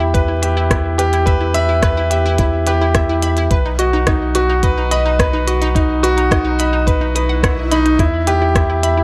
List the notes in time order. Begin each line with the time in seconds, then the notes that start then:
Already playing: E2 E4 G4 E5
0.00 E4
0.14 B4, kick, closed hi-hat
0.28 E4
0.42 G4 E5, closed hi-hat
0.57 E4
0.70 E4, kick, cross-stick, closed hi-hat
0.98 G4 B4, closed hi-hat
1.13 E4, closed hi-hat
1.26 B4 E5, kick, closed hi-hat
1.41 E4
1.54 E5 B5, closed hi-hat
1.69 E4
1.82 B4, kick, cross-stick, closed hi-hat
1.97 E4
2.10 G4 E5, closed hi-hat
2.26 E4
2.38 E4, kick, closed hi-hat
2.67 G4 B4, closed hi-hat
2.81 E4
2.95 E4 E5, kick, cross-stick, closed hi-hat
3.09 E4
3.23 E5 B5, closed hi-hat
3.37 E4, closed hi-hat
3.51 B1 B4, kick, closed hi-hat
3.66 D#4
3.79 F#4 D#5, closed hi-hat
3.93 D#4
4.07 D#4, kick, cross-stick, closed hi-hat
4.35 F#4 B4, closed hi-hat
4.49 D#4
4.63 B4 D#5, kick, closed hi-hat
4.78 D#4
4.91 D#5 B5, closed hi-hat
5.06 D#4
5.19 B4, kick, cross-stick, closed hi-hat
5.33 D#4
5.47 F#4 D#5, closed hi-hat
5.62 D#4, closed hi-hat
5.75 D#4, kick, closed hi-hat
6.03 F#4 B4, closed hi-hat
6.17 D#4, closed hi-hat
6.31 D#4 D#5, kick, cross-stick, closed hi-hat
6.45 D#4
6.59 D#5 B5, closed hi-hat
6.73 D#4
6.87 B4, kick, closed hi-hat, swell
7.01 D#4
7.15 B4 D#6, closed hi-hat
7.29 F#5
7.43 B4 F#5, kick, cross-stick, closed hi-hat
7.71 D#4 B5, closed hi-hat
7.86 D#4, closed hi-hat
7.99 E2 E4, kick, closed hi-hat
8.27 G4 B4, closed hi-hat
8.42 E4
8.55 E4 E5, kick, cross-stick, closed hi-hat
8.70 E4
8.83 E5 B5, closed hi-hat
8.97 E4